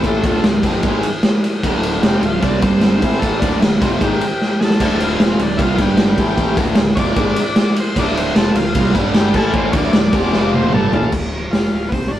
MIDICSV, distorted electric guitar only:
0, 0, Header, 1, 2, 480
1, 0, Start_track
1, 0, Key_signature, -1, "minor"
1, 0, Tempo, 395517
1, 59, Time_signature, 4, 2, 24, 8
1, 14800, End_track
2, 0, Start_track
2, 0, Title_t, "Distorted electric guitar"
2, 0, Program_c, 0, 30
2, 0, Note_on_c, 0, 45, 78
2, 0, Note_on_c, 0, 52, 89
2, 0, Note_on_c, 0, 57, 86
2, 272, Note_off_c, 0, 45, 0
2, 277, Note_on_c, 0, 38, 96
2, 287, Note_off_c, 0, 57, 0
2, 288, Note_off_c, 0, 52, 0
2, 292, Note_on_c, 0, 45, 96
2, 295, Note_on_c, 0, 50, 110
2, 522, Note_off_c, 0, 38, 0
2, 530, Note_off_c, 0, 45, 0
2, 531, Note_off_c, 0, 50, 0
2, 548, Note_on_c, 0, 38, 53
2, 550, Note_on_c, 0, 45, 73
2, 737, Note_off_c, 0, 38, 0
2, 738, Note_off_c, 0, 45, 0
2, 776, Note_on_c, 0, 41, 113
2, 788, Note_on_c, 0, 48, 97
2, 802, Note_on_c, 0, 53, 102
2, 1013, Note_off_c, 0, 41, 0
2, 1018, Note_off_c, 0, 48, 0
2, 1026, Note_off_c, 0, 53, 0
2, 1026, Note_on_c, 0, 44, 104
2, 1040, Note_on_c, 0, 51, 111
2, 1046, Note_on_c, 0, 56, 108
2, 1258, Note_off_c, 0, 44, 0
2, 1265, Note_off_c, 0, 51, 0
2, 1268, Note_off_c, 0, 56, 0
2, 1983, Note_on_c, 0, 38, 90
2, 1998, Note_on_c, 0, 45, 101
2, 2003, Note_on_c, 0, 50, 91
2, 2444, Note_off_c, 0, 38, 0
2, 2449, Note_on_c, 0, 41, 92
2, 2457, Note_off_c, 0, 45, 0
2, 2462, Note_on_c, 0, 48, 97
2, 2468, Note_off_c, 0, 50, 0
2, 2486, Note_on_c, 0, 53, 101
2, 2691, Note_off_c, 0, 41, 0
2, 2697, Note_off_c, 0, 48, 0
2, 2697, Note_on_c, 0, 38, 71
2, 2702, Note_on_c, 0, 45, 80
2, 2709, Note_off_c, 0, 53, 0
2, 2895, Note_off_c, 0, 38, 0
2, 2897, Note_off_c, 0, 45, 0
2, 2915, Note_on_c, 0, 48, 108
2, 2934, Note_on_c, 0, 55, 102
2, 2938, Note_on_c, 0, 60, 116
2, 3150, Note_off_c, 0, 48, 0
2, 3155, Note_on_c, 0, 43, 100
2, 3165, Note_off_c, 0, 55, 0
2, 3172, Note_on_c, 0, 50, 104
2, 3175, Note_off_c, 0, 60, 0
2, 3180, Note_on_c, 0, 55, 107
2, 3645, Note_off_c, 0, 43, 0
2, 3645, Note_on_c, 0, 45, 86
2, 3662, Note_off_c, 0, 50, 0
2, 3662, Note_on_c, 0, 52, 81
2, 3668, Note_off_c, 0, 55, 0
2, 3668, Note_on_c, 0, 57, 98
2, 4130, Note_off_c, 0, 45, 0
2, 4139, Note_off_c, 0, 52, 0
2, 4142, Note_off_c, 0, 57, 0
2, 4144, Note_on_c, 0, 38, 100
2, 4154, Note_on_c, 0, 45, 105
2, 4155, Note_on_c, 0, 50, 101
2, 4356, Note_off_c, 0, 38, 0
2, 4364, Note_off_c, 0, 45, 0
2, 4371, Note_on_c, 0, 38, 60
2, 4379, Note_on_c, 0, 45, 65
2, 4385, Note_off_c, 0, 50, 0
2, 4572, Note_off_c, 0, 38, 0
2, 4576, Note_off_c, 0, 45, 0
2, 4610, Note_on_c, 0, 48, 104
2, 4611, Note_on_c, 0, 41, 98
2, 4629, Note_on_c, 0, 53, 120
2, 4849, Note_off_c, 0, 41, 0
2, 4853, Note_off_c, 0, 48, 0
2, 4854, Note_on_c, 0, 44, 105
2, 4858, Note_on_c, 0, 51, 107
2, 4862, Note_off_c, 0, 53, 0
2, 4871, Note_on_c, 0, 56, 127
2, 5095, Note_off_c, 0, 44, 0
2, 5097, Note_off_c, 0, 51, 0
2, 5103, Note_off_c, 0, 56, 0
2, 5827, Note_on_c, 0, 38, 93
2, 5836, Note_on_c, 0, 45, 100
2, 5849, Note_on_c, 0, 50, 100
2, 6296, Note_off_c, 0, 38, 0
2, 6301, Note_on_c, 0, 41, 85
2, 6303, Note_off_c, 0, 45, 0
2, 6308, Note_on_c, 0, 48, 91
2, 6311, Note_off_c, 0, 50, 0
2, 6315, Note_on_c, 0, 53, 89
2, 6538, Note_off_c, 0, 41, 0
2, 6542, Note_off_c, 0, 48, 0
2, 6545, Note_off_c, 0, 53, 0
2, 6556, Note_on_c, 0, 38, 71
2, 6562, Note_on_c, 0, 45, 74
2, 6745, Note_off_c, 0, 38, 0
2, 6748, Note_off_c, 0, 45, 0
2, 6771, Note_on_c, 0, 48, 111
2, 6781, Note_on_c, 0, 55, 113
2, 6790, Note_on_c, 0, 60, 117
2, 7023, Note_off_c, 0, 48, 0
2, 7023, Note_on_c, 0, 43, 107
2, 7027, Note_off_c, 0, 55, 0
2, 7027, Note_on_c, 0, 50, 116
2, 7036, Note_off_c, 0, 60, 0
2, 7036, Note_on_c, 0, 55, 101
2, 7498, Note_off_c, 0, 43, 0
2, 7500, Note_off_c, 0, 50, 0
2, 7503, Note_on_c, 0, 45, 81
2, 7505, Note_off_c, 0, 55, 0
2, 7506, Note_on_c, 0, 52, 91
2, 7522, Note_on_c, 0, 57, 89
2, 7957, Note_off_c, 0, 45, 0
2, 7962, Note_on_c, 0, 38, 92
2, 7978, Note_off_c, 0, 52, 0
2, 7983, Note_on_c, 0, 45, 102
2, 7988, Note_off_c, 0, 57, 0
2, 7993, Note_on_c, 0, 50, 96
2, 8186, Note_off_c, 0, 38, 0
2, 8200, Note_on_c, 0, 38, 69
2, 8204, Note_off_c, 0, 45, 0
2, 8219, Note_on_c, 0, 45, 61
2, 8223, Note_off_c, 0, 50, 0
2, 8406, Note_off_c, 0, 38, 0
2, 8415, Note_off_c, 0, 45, 0
2, 8451, Note_on_c, 0, 41, 109
2, 8460, Note_on_c, 0, 48, 110
2, 8485, Note_on_c, 0, 53, 109
2, 8684, Note_off_c, 0, 41, 0
2, 8689, Note_on_c, 0, 44, 103
2, 8696, Note_off_c, 0, 48, 0
2, 8708, Note_off_c, 0, 53, 0
2, 8713, Note_on_c, 0, 51, 111
2, 8718, Note_on_c, 0, 56, 122
2, 8930, Note_off_c, 0, 44, 0
2, 8942, Note_off_c, 0, 51, 0
2, 8944, Note_off_c, 0, 56, 0
2, 9665, Note_on_c, 0, 38, 94
2, 9684, Note_on_c, 0, 45, 87
2, 9694, Note_on_c, 0, 50, 97
2, 10136, Note_off_c, 0, 38, 0
2, 10144, Note_off_c, 0, 45, 0
2, 10144, Note_on_c, 0, 41, 83
2, 10149, Note_on_c, 0, 48, 94
2, 10150, Note_off_c, 0, 50, 0
2, 10169, Note_on_c, 0, 53, 103
2, 10375, Note_off_c, 0, 41, 0
2, 10377, Note_off_c, 0, 48, 0
2, 10388, Note_off_c, 0, 53, 0
2, 10393, Note_on_c, 0, 45, 85
2, 10395, Note_on_c, 0, 38, 77
2, 10578, Note_off_c, 0, 45, 0
2, 10579, Note_off_c, 0, 38, 0
2, 10617, Note_on_c, 0, 48, 97
2, 10632, Note_on_c, 0, 55, 113
2, 10650, Note_on_c, 0, 60, 121
2, 10863, Note_off_c, 0, 48, 0
2, 10863, Note_on_c, 0, 43, 95
2, 10881, Note_off_c, 0, 55, 0
2, 10881, Note_on_c, 0, 50, 111
2, 10889, Note_off_c, 0, 60, 0
2, 10889, Note_on_c, 0, 55, 97
2, 11332, Note_off_c, 0, 43, 0
2, 11341, Note_off_c, 0, 50, 0
2, 11345, Note_off_c, 0, 55, 0
2, 11349, Note_on_c, 0, 45, 78
2, 11355, Note_on_c, 0, 52, 96
2, 11376, Note_on_c, 0, 57, 97
2, 11801, Note_off_c, 0, 45, 0
2, 11808, Note_on_c, 0, 38, 100
2, 11811, Note_off_c, 0, 52, 0
2, 11816, Note_on_c, 0, 45, 93
2, 11828, Note_off_c, 0, 57, 0
2, 11833, Note_on_c, 0, 50, 111
2, 12040, Note_off_c, 0, 38, 0
2, 12048, Note_off_c, 0, 45, 0
2, 12054, Note_on_c, 0, 38, 66
2, 12057, Note_off_c, 0, 50, 0
2, 12066, Note_on_c, 0, 45, 72
2, 12247, Note_off_c, 0, 38, 0
2, 12253, Note_off_c, 0, 45, 0
2, 12285, Note_on_c, 0, 41, 101
2, 12288, Note_on_c, 0, 48, 120
2, 12302, Note_on_c, 0, 53, 111
2, 12510, Note_off_c, 0, 41, 0
2, 12524, Note_off_c, 0, 48, 0
2, 12525, Note_on_c, 0, 41, 96
2, 12531, Note_off_c, 0, 53, 0
2, 12537, Note_on_c, 0, 48, 110
2, 12555, Note_on_c, 0, 53, 120
2, 12989, Note_off_c, 0, 41, 0
2, 12994, Note_on_c, 0, 43, 94
2, 13003, Note_off_c, 0, 48, 0
2, 13008, Note_on_c, 0, 50, 116
2, 13009, Note_off_c, 0, 53, 0
2, 13014, Note_on_c, 0, 55, 117
2, 13235, Note_off_c, 0, 43, 0
2, 13240, Note_on_c, 0, 45, 89
2, 13245, Note_off_c, 0, 50, 0
2, 13248, Note_off_c, 0, 55, 0
2, 13253, Note_on_c, 0, 52, 88
2, 13268, Note_on_c, 0, 57, 96
2, 13481, Note_off_c, 0, 45, 0
2, 13487, Note_off_c, 0, 52, 0
2, 13495, Note_off_c, 0, 57, 0
2, 14800, End_track
0, 0, End_of_file